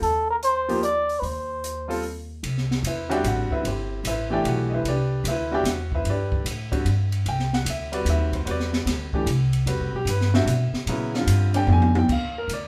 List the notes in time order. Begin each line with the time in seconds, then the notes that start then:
0.01 D#2 A4, open hi-hat
0.30 A#4
0.43 C5, closed hi-hat
0.69 F3 A#3 D#4 G4, open hi-hat
0.83 D5, closed hi-hat
1.09 open hi-hat
1.20 D#2 B4, open hi-hat
1.25 C5
1.64 closed hi-hat
1.88 G3 C4 F4 A4, open hi-hat
2.03 open hi-hat
2.43 C2, ride
2.58 snare
2.71 snare
2.83 E2, hi-hat pedal, ride
2.87 E4 B4 C5 E5
3.09 D3 G3 C4 F#4 G4 D5 E5 G5, ride
3.24 A1, hi-hat pedal, ride
3.28 F#4 F#5
3.50 E4 B4 C5 E5, muted upright bass stroke, kick
3.63 G1 C4 E4 G4, ride
4.04 A1 E4 B4 E5, hi-hat pedal, ride
4.08 C5
4.30 E3 A3 D4 G4 D5 E5 G5
4.44 B1, ride
4.48 F#4 F#5
4.69 D#5 E5
4.74 E4 B4 C5
4.84 C2, ride
4.88 D4 G4 B4 D5
5.24 D2 E5, hi-hat pedal, ride
5.29 E4 B4 C5
5.51 D3 G3 C4 F#4 G4 D5 E5 G5
5.64 E2, snare, hi-hat pedal, ride
5.69 F#4 F#5
5.92 E4 B4 C5 E5, kick
6.04 G2, ride
6.10 D4 G4 B4 D5
6.32 kick
6.45 A2, hi-hat pedal, ride
6.72 D3 G3 C4 F#4, kick, ride
6.85 G2, ride
7.12 ride
7.26 C2 G5, ride
7.39 snare
7.53 F#5, snare
7.65 D2, hi-hat pedal, ride
7.70 E5
7.92 G3 C4 F#4 B4 D5, ride
8.05 D#2, hi-hat pedal, ride
8.10 E5
8.33 C5, kick, ride
8.45 E2 G3 C4 F#4 B4, ride
8.51 D5
8.60 snare
8.73 snare
8.85 D2, snare, ride
9.13 E3 A3 D4 G4, kick
9.26 C2, hi-hat pedal, ride
9.53 ride
9.66 E2 G3 C4 F#4 B4, ride
9.80 C2
9.93 B1 G4
10.05 G2, hi-hat pedal, ride
10.10 B4
10.21 snare
10.34 D3 G3 C4 F#4 E5, snare
10.45 B2, hi-hat pedal, ride
10.73 muted upright bass stroke, snare
10.86 A#2 C#3 F#3 B3 E4, ride
11.14 D3 G3 C4 F4, snare
11.27 G2, hi-hat pedal, ride
11.54 D3 G3 C4 D4 G5, ride
11.67 F2, high tom
11.72 G#5
11.82 high tom
11.95 G5, high tom
12.08 D#2 F5, kick, crash
12.38 A#4
12.48 D2, hi-hat pedal, ride
12.53 D5